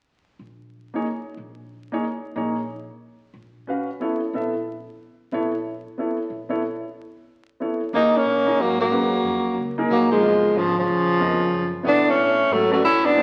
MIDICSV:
0, 0, Header, 1, 6, 480
1, 0, Start_track
1, 0, Tempo, 327154
1, 103, Time_signature, 3, 2, 24, 8
1, 19405, End_track
2, 0, Start_track
2, 0, Title_t, "Grand piano"
2, 0, Program_c, 0, 0
2, 1375, Note_on_c, 0, 58, 54
2, 1394, Note_on_c, 0, 63, 51
2, 1405, Note_on_c, 0, 68, 47
2, 1406, Note_on_c, 0, 73, 59
2, 1532, Note_off_c, 0, 58, 0
2, 1542, Note_off_c, 0, 63, 0
2, 1547, Note_off_c, 0, 68, 0
2, 1548, Note_off_c, 0, 73, 0
2, 2816, Note_on_c, 0, 58, 56
2, 2829, Note_on_c, 0, 63, 48
2, 2837, Note_on_c, 0, 68, 53
2, 2843, Note_on_c, 0, 73, 63
2, 2975, Note_off_c, 0, 58, 0
2, 2982, Note_off_c, 0, 63, 0
2, 2986, Note_off_c, 0, 68, 0
2, 2988, Note_off_c, 0, 73, 0
2, 3458, Note_on_c, 0, 58, 56
2, 3464, Note_on_c, 0, 63, 49
2, 3473, Note_on_c, 0, 68, 47
2, 3483, Note_on_c, 0, 73, 62
2, 3741, Note_off_c, 0, 58, 0
2, 3743, Note_off_c, 0, 63, 0
2, 3748, Note_off_c, 0, 68, 0
2, 3753, Note_off_c, 0, 73, 0
2, 5388, Note_on_c, 0, 61, 53
2, 5402, Note_on_c, 0, 66, 49
2, 5409, Note_on_c, 0, 71, 48
2, 5425, Note_on_c, 0, 77, 54
2, 5668, Note_off_c, 0, 61, 0
2, 5675, Note_off_c, 0, 66, 0
2, 5678, Note_off_c, 0, 71, 0
2, 5686, Note_off_c, 0, 77, 0
2, 5873, Note_on_c, 0, 59, 51
2, 5889, Note_on_c, 0, 64, 44
2, 5891, Note_on_c, 0, 69, 45
2, 5895, Note_on_c, 0, 73, 56
2, 6151, Note_off_c, 0, 59, 0
2, 6158, Note_off_c, 0, 64, 0
2, 6160, Note_off_c, 0, 69, 0
2, 6162, Note_off_c, 0, 73, 0
2, 6366, Note_on_c, 0, 59, 50
2, 6373, Note_on_c, 0, 64, 44
2, 6377, Note_on_c, 0, 69, 45
2, 6396, Note_on_c, 0, 76, 51
2, 6637, Note_off_c, 0, 59, 0
2, 6641, Note_off_c, 0, 64, 0
2, 6643, Note_off_c, 0, 69, 0
2, 6652, Note_off_c, 0, 76, 0
2, 7809, Note_on_c, 0, 59, 55
2, 7815, Note_on_c, 0, 64, 55
2, 7827, Note_on_c, 0, 69, 53
2, 7838, Note_on_c, 0, 73, 66
2, 8080, Note_off_c, 0, 59, 0
2, 8083, Note_off_c, 0, 64, 0
2, 8089, Note_off_c, 0, 69, 0
2, 8094, Note_off_c, 0, 73, 0
2, 8770, Note_on_c, 0, 59, 46
2, 8790, Note_on_c, 0, 69, 42
2, 8791, Note_on_c, 0, 64, 42
2, 8801, Note_on_c, 0, 73, 49
2, 9040, Note_off_c, 0, 59, 0
2, 9050, Note_off_c, 0, 69, 0
2, 9051, Note_off_c, 0, 64, 0
2, 9056, Note_off_c, 0, 73, 0
2, 9523, Note_on_c, 0, 59, 52
2, 9530, Note_on_c, 0, 64, 50
2, 9540, Note_on_c, 0, 69, 50
2, 9543, Note_on_c, 0, 73, 61
2, 9693, Note_off_c, 0, 59, 0
2, 9697, Note_off_c, 0, 64, 0
2, 9702, Note_off_c, 0, 69, 0
2, 9703, Note_off_c, 0, 73, 0
2, 11153, Note_on_c, 0, 59, 45
2, 11158, Note_on_c, 0, 64, 39
2, 11168, Note_on_c, 0, 69, 41
2, 11179, Note_on_c, 0, 73, 54
2, 11431, Note_off_c, 0, 59, 0
2, 11433, Note_off_c, 0, 64, 0
2, 11439, Note_off_c, 0, 69, 0
2, 11444, Note_off_c, 0, 73, 0
2, 11637, Note_on_c, 0, 58, 58
2, 11650, Note_on_c, 0, 63, 54
2, 11661, Note_on_c, 0, 68, 54
2, 11668, Note_on_c, 0, 73, 63
2, 11913, Note_off_c, 0, 58, 0
2, 11919, Note_off_c, 0, 63, 0
2, 11925, Note_off_c, 0, 68, 0
2, 11928, Note_off_c, 0, 73, 0
2, 12416, Note_on_c, 0, 58, 61
2, 12425, Note_on_c, 0, 63, 57
2, 12429, Note_on_c, 0, 68, 52
2, 12444, Note_on_c, 0, 75, 66
2, 12578, Note_off_c, 0, 58, 0
2, 12583, Note_off_c, 0, 63, 0
2, 12585, Note_off_c, 0, 68, 0
2, 12592, Note_off_c, 0, 75, 0
2, 13072, Note_on_c, 0, 56, 53
2, 13076, Note_on_c, 0, 61, 51
2, 13085, Note_on_c, 0, 66, 47
2, 13102, Note_on_c, 0, 71, 57
2, 13349, Note_off_c, 0, 56, 0
2, 13350, Note_off_c, 0, 61, 0
2, 13355, Note_off_c, 0, 66, 0
2, 13364, Note_off_c, 0, 71, 0
2, 14346, Note_on_c, 0, 58, 66
2, 14349, Note_on_c, 0, 63, 60
2, 14361, Note_on_c, 0, 68, 60
2, 14362, Note_on_c, 0, 70, 74
2, 14962, Note_off_c, 0, 58, 0
2, 14964, Note_off_c, 0, 63, 0
2, 14969, Note_off_c, 0, 68, 0
2, 14970, Note_off_c, 0, 70, 0
2, 14989, Note_on_c, 0, 59, 49
2, 14997, Note_on_c, 0, 65, 47
2, 15010, Note_on_c, 0, 70, 47
2, 15017, Note_on_c, 0, 75, 54
2, 15713, Note_off_c, 0, 59, 0
2, 15717, Note_off_c, 0, 65, 0
2, 15724, Note_off_c, 0, 70, 0
2, 15727, Note_off_c, 0, 75, 0
2, 16434, Note_on_c, 0, 59, 56
2, 16442, Note_on_c, 0, 65, 53
2, 16451, Note_on_c, 0, 70, 51
2, 16456, Note_on_c, 0, 75, 61
2, 16705, Note_off_c, 0, 59, 0
2, 16709, Note_off_c, 0, 65, 0
2, 16714, Note_off_c, 0, 70, 0
2, 16716, Note_off_c, 0, 75, 0
2, 17357, Note_on_c, 0, 59, 51
2, 17370, Note_on_c, 0, 64, 47
2, 17379, Note_on_c, 0, 69, 43
2, 17385, Note_on_c, 0, 73, 54
2, 18093, Note_off_c, 0, 59, 0
2, 18100, Note_off_c, 0, 64, 0
2, 18105, Note_off_c, 0, 69, 0
2, 18108, Note_off_c, 0, 73, 0
2, 18635, Note_on_c, 0, 61, 73
2, 18638, Note_on_c, 0, 66, 67
2, 18641, Note_on_c, 0, 71, 68
2, 18656, Note_on_c, 0, 74, 76
2, 18800, Note_off_c, 0, 61, 0
2, 18801, Note_off_c, 0, 66, 0
2, 18803, Note_off_c, 0, 71, 0
2, 18810, Note_off_c, 0, 74, 0
2, 19294, Note_on_c, 0, 58, 52
2, 19302, Note_on_c, 0, 68, 52
2, 19303, Note_on_c, 0, 63, 50
2, 19323, Note_on_c, 0, 72, 60
2, 19405, Note_off_c, 0, 58, 0
2, 19405, Note_off_c, 0, 63, 0
2, 19405, Note_off_c, 0, 68, 0
2, 19405, Note_off_c, 0, 72, 0
2, 19405, End_track
3, 0, Start_track
3, 0, Title_t, "Tenor saxophone"
3, 0, Program_c, 1, 66
3, 11674, Note_on_c, 1, 63, 83
3, 11982, Note_on_c, 1, 61, 83
3, 12004, Note_off_c, 1, 63, 0
3, 12640, Note_on_c, 1, 58, 83
3, 12662, Note_off_c, 1, 61, 0
3, 12923, Note_off_c, 1, 58, 0
3, 12930, Note_on_c, 1, 58, 76
3, 14294, Note_off_c, 1, 58, 0
3, 14555, Note_on_c, 1, 58, 88
3, 14819, Note_off_c, 1, 58, 0
3, 14848, Note_on_c, 1, 56, 86
3, 15518, Note_on_c, 1, 53, 83
3, 15540, Note_off_c, 1, 56, 0
3, 15799, Note_off_c, 1, 53, 0
3, 15837, Note_on_c, 1, 53, 82
3, 17184, Note_off_c, 1, 53, 0
3, 17433, Note_on_c, 1, 62, 94
3, 17753, Note_on_c, 1, 61, 87
3, 17775, Note_off_c, 1, 62, 0
3, 18392, Note_on_c, 1, 57, 91
3, 18414, Note_off_c, 1, 61, 0
3, 18672, Note_off_c, 1, 57, 0
3, 18678, Note_on_c, 1, 57, 82
3, 18827, Note_off_c, 1, 57, 0
3, 18848, Note_on_c, 1, 64, 103
3, 19154, Note_on_c, 1, 62, 98
3, 19176, Note_off_c, 1, 64, 0
3, 19405, Note_off_c, 1, 62, 0
3, 19405, End_track
4, 0, Start_track
4, 0, Title_t, "Tenor saxophone"
4, 0, Program_c, 2, 66
4, 11661, Note_on_c, 2, 58, 75
4, 11981, Note_off_c, 2, 58, 0
4, 11981, Note_on_c, 2, 58, 71
4, 12620, Note_on_c, 2, 54, 64
4, 12642, Note_off_c, 2, 58, 0
4, 12898, Note_off_c, 2, 54, 0
4, 12906, Note_on_c, 2, 54, 68
4, 14283, Note_off_c, 2, 54, 0
4, 14530, Note_on_c, 2, 54, 70
4, 14805, Note_off_c, 2, 54, 0
4, 14834, Note_on_c, 2, 53, 73
4, 15503, Note_on_c, 2, 49, 66
4, 15525, Note_off_c, 2, 53, 0
4, 15791, Note_off_c, 2, 49, 0
4, 15800, Note_on_c, 2, 49, 73
4, 17166, Note_off_c, 2, 49, 0
4, 17403, Note_on_c, 2, 59, 77
4, 17724, Note_on_c, 2, 57, 80
4, 17746, Note_off_c, 2, 59, 0
4, 18382, Note_on_c, 2, 54, 72
4, 18404, Note_off_c, 2, 57, 0
4, 18667, Note_off_c, 2, 54, 0
4, 18689, Note_on_c, 2, 54, 66
4, 18833, Note_off_c, 2, 54, 0
4, 18859, Note_on_c, 2, 61, 82
4, 19142, Note_on_c, 2, 59, 82
4, 19164, Note_off_c, 2, 61, 0
4, 19405, Note_off_c, 2, 59, 0
4, 19405, End_track
5, 0, Start_track
5, 0, Title_t, "Upright bass"
5, 0, Program_c, 3, 32
5, 576, Note_on_c, 3, 34, 61
5, 1344, Note_off_c, 3, 34, 0
5, 2010, Note_on_c, 3, 34, 65
5, 2784, Note_off_c, 3, 34, 0
5, 3457, Note_on_c, 3, 34, 72
5, 4229, Note_off_c, 3, 34, 0
5, 4893, Note_on_c, 3, 34, 62
5, 5668, Note_off_c, 3, 34, 0
5, 6357, Note_on_c, 3, 34, 67
5, 7122, Note_off_c, 3, 34, 0
5, 7803, Note_on_c, 3, 34, 69
5, 8565, Note_off_c, 3, 34, 0
5, 9241, Note_on_c, 3, 34, 67
5, 10004, Note_off_c, 3, 34, 0
5, 11633, Note_on_c, 3, 39, 77
5, 11920, Note_off_c, 3, 39, 0
5, 12100, Note_on_c, 3, 46, 75
5, 12575, Note_off_c, 3, 46, 0
5, 12587, Note_on_c, 3, 44, 77
5, 13058, Note_off_c, 3, 44, 0
5, 13069, Note_on_c, 3, 42, 70
5, 13529, Note_off_c, 3, 42, 0
5, 13538, Note_on_c, 3, 41, 81
5, 14012, Note_off_c, 3, 41, 0
5, 14018, Note_on_c, 3, 37, 74
5, 14488, Note_off_c, 3, 37, 0
5, 14497, Note_on_c, 3, 34, 75
5, 14970, Note_off_c, 3, 34, 0
5, 14990, Note_on_c, 3, 30, 81
5, 15456, Note_off_c, 3, 30, 0
5, 15468, Note_on_c, 3, 32, 84
5, 15935, Note_off_c, 3, 32, 0
5, 15949, Note_on_c, 3, 34, 72
5, 16405, Note_off_c, 3, 34, 0
5, 16414, Note_on_c, 3, 41, 83
5, 16886, Note_off_c, 3, 41, 0
5, 16897, Note_on_c, 3, 42, 75
5, 17367, Note_off_c, 3, 42, 0
5, 17374, Note_on_c, 3, 47, 75
5, 17845, Note_off_c, 3, 47, 0
5, 17856, Note_on_c, 3, 45, 80
5, 18325, Note_off_c, 3, 45, 0
5, 18332, Note_on_c, 3, 44, 74
5, 18796, Note_off_c, 3, 44, 0
5, 19281, Note_on_c, 3, 38, 82
5, 19405, Note_off_c, 3, 38, 0
5, 19405, End_track
6, 0, Start_track
6, 0, Title_t, "Muted upright bass strokes"
6, 11932, Note_on_c, 9, 29, 35
6, 12079, Note_off_c, 9, 29, 0
6, 19405, End_track
0, 0, End_of_file